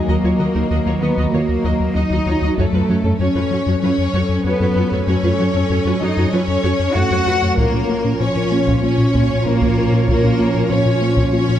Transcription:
Already playing: F#3 F#4 D#5 A#5
0.07 D#2 D#3 A#3 F#4 A#4 D#5
0.24 D#2 F#3 F4 C#5
0.39 D#2 D#3 F#4 D#5
0.54 D#2 F#3 D#4 A#4
0.70 D#2 D#3 F#4 D#5
0.86 D#2 D#4 F4 C#5
1.01 D#2 D#3 A#3 B3 F#4 B4 D#5
1.17 D#2 D#3 F#4 D#5
1.32 D#2 D#3 A#3 F4 A#4 C#5
1.49 D#2
1.64 D#2 D#3 F#4 D#5
1.80 D#2
1.94 D#2 F#3 D#4 F#4 D#5
2.10 D#2 D#3 F#4 D#5
2.26 D#2 D#4 F4 C#5
2.42 D#2 F#3 F#4 D#5
2.57 F#2 F#3 A3 C#4 F#4 A4 C#5, taiko
2.73 F#2 A3 F4 B4
2.89 F#2 F#3 C#4 F#4 C#5
3.04 F#2 A3 C#4 A4
3.19 F#2 F#3 C#4 F#4 C#5
3.35 F#2 F4 F#4 B4
3.51 F#2 F#3 C#4 F#4 C#5
3.67 F#2 F#3 F#4 C#5
3.82 F#2 F#3 C#4 F4 B4 C#5
3.98 F#2
4.14 F#2 F#3 F#4 C#5
4.29 F#2
4.44 F#2 A3 B3 F#4 B4 C#5
4.60 F#2 F#3 F#4 C#5
4.76 F#2 F4 F#4 B4
4.92 F#2 A3 F#4 C#5
5.07 F#2 F#3 C#4 F#4 C#5
5.23 F#2 A3 F4 B4
5.39 F#2 F#3 C#4 F#4 C#5
5.54 F#2 A3 C#4 A4
5.70 F#2 F#3 F#4 C#5
5.85 F#2 F4 F#4 B4
6.01 F#2 F#3 C#4 D#4 F#4 C#5 D#5
6.17 F#2 F#3 F#4 C#5
6.32 F#2 F#3 C#4 F4 B4 C#5
6.48 F#2
6.64 F#2 F#3 F#4 C#5
6.79 F#2
6.95 F#2 A3 F#4 C#5 F#5
7.11 F#2 F#3 F#4 C#5
7.26 F#2 F4 F#4 B4
7.42 F#2 A3 F#4 C#5
7.57 A#1 A#2 F3 A#3 C#4 F4 A#4 C#5, taiko
7.74 A#2 C#4
7.90 A#3 F4
8.05 A#2 C#4
8.20 A#2 A#3 C#4 C#5
8.36 A#2 A#4
8.52 A#3 F4
8.67 A#2 A#3, taiko
8.83 A#3 C#4 F4 C#5
8.98 A#2
9.14 A#2 A#3, taiko
9.30 A#2
9.45 A#2 A#3 C#4 A#4
9.61 A#2 A#3, taiko
9.77 A#2 A#4
9.92 A#2 C#4
10.08 A#2 A#3 A#4, taiko
10.24 A#2 C#4
10.39 A#3 F4
10.54 A#2 C#4
10.70 A#2 A#3 C#4 C#5
10.86 A#2 A#4
11.02 A#3 F4
11.17 A#2 A#3, taiko
11.33 A#3 C#4 F4 C#5
11.48 A#2

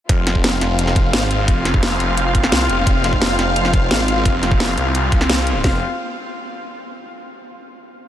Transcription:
0.09 F1 C4 F4 F5, kick, closed hi-hat
0.27 snare, closed hi-hat
0.35 kick
0.44 snare, closed hi-hat
0.61 F1, snare, closed hi-hat
0.79 closed hi-hat
0.87 snare
0.96 kick, closed hi-hat
1.13 G#1, snare, closed hi-hat
1.31 closed hi-hat
1.48 F1, kick, closed hi-hat
1.65 snare, closed hi-hat
1.74 kick
1.83 snare, closed hi-hat
2.00 F1, closed hi-hat
2.17 closed hi-hat
2.35 kick, closed hi-hat
2.44 snare
2.52 C2, snare, closed hi-hat
2.69 F1, closed hi-hat
2.87 F1, kick, closed hi-hat
3.04 snare, closed hi-hat
3.13 kick
3.22 snare, closed hi-hat
3.39 F1, snare, closed hi-hat
3.56 closed hi-hat
3.65 snare
3.73 kick, closed hi-hat
3.91 G#1, snare, closed hi-hat
4.08 closed hi-hat
4.25 F1, kick, closed hi-hat
4.43 snare, closed hi-hat
4.51 kick
4.60 snare, closed hi-hat
4.78 C2, closed hi-hat
4.95 closed hi-hat
5.12 C2, kick, closed hi-hat
5.21 snare
5.29 C2, snare, closed hi-hat
5.47 closed hi-hat
5.64 F1 C4 F4 F5, kick, snare

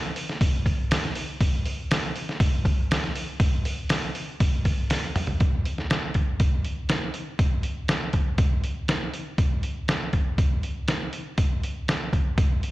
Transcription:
0.16 open hi-hat
0.29 snare
0.41 kick, open hi-hat
0.66 kick, open hi-hat
0.91 snare, open hi-hat
1.05 snare
1.15 open hi-hat
1.41 kick, open hi-hat
1.65 open hi-hat
1.91 snare, open hi-hat
2.16 open hi-hat
2.29 snare
2.40 kick, open hi-hat
2.65 kick, open hi-hat
2.91 snare, open hi-hat
3.04 snare
3.16 open hi-hat
3.40 kick, open hi-hat
3.65 open hi-hat
3.89 snare, open hi-hat
4.15 open hi-hat
4.40 kick, open hi-hat
4.65 kick, open hi-hat
4.90 snare, open hi-hat
5.16 mid tom, open hi-hat
5.27 floor tom
5.40 kick, open hi-hat
5.65 open hi-hat
5.78 snare
5.90 snare, open hi-hat
6.14 kick, open hi-hat
6.40 kick, open hi-hat
6.65 open hi-hat
6.89 snare, open hi-hat
7.14 open hi-hat
7.39 kick, open hi-hat
7.63 open hi-hat
7.88 snare, open hi-hat
8.13 kick, open hi-hat
8.38 kick, open hi-hat
8.64 open hi-hat
8.88 snare, open hi-hat
9.14 open hi-hat
9.38 kick, open hi-hat
9.63 open hi-hat
9.88 snare, open hi-hat
10.13 kick, open hi-hat
10.38 kick, open hi-hat
10.63 open hi-hat
10.88 snare, open hi-hat
11.13 open hi-hat
11.38 kick, open hi-hat
11.63 open hi-hat
11.88 snare, open hi-hat
12.13 kick, open hi-hat
12.38 kick, open hi-hat
12.63 open hi-hat

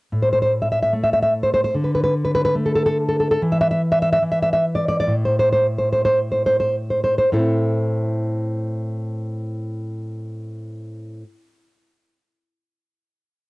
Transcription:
0.12 A2
0.22 C5
0.33 C5
0.42 C5
0.62 E5
0.72 E5
0.83 E5
0.93 A3
1.04 E5
1.13 E5
1.23 E5
1.43 C5
1.54 C5
1.64 C5
1.75 D3
1.84 B4
1.95 B4
2.04 B4
2.25 B4
2.35 B4
2.45 B4
2.55 A3
2.66 A4
2.76 A4
2.86 A4
3.09 A4
3.20 A4
3.31 A4
3.42 E3
3.52 E5
3.61 E5
3.71 E5
3.92 E5
4.02 E5
4.13 E5
4.22 E3
4.32 E5
4.42 E5
4.53 E5
4.75 D5
4.88 D5
5.00 D5
5.07 A2
5.25 C5
5.39 C5
5.53 C5
5.78 C5
5.93 C5
6.05 C5
6.32 C5
6.46 C5
6.60 C5
6.90 C5
7.04 C5
7.18 C5
7.32 A2 C4 E4 A4 C5

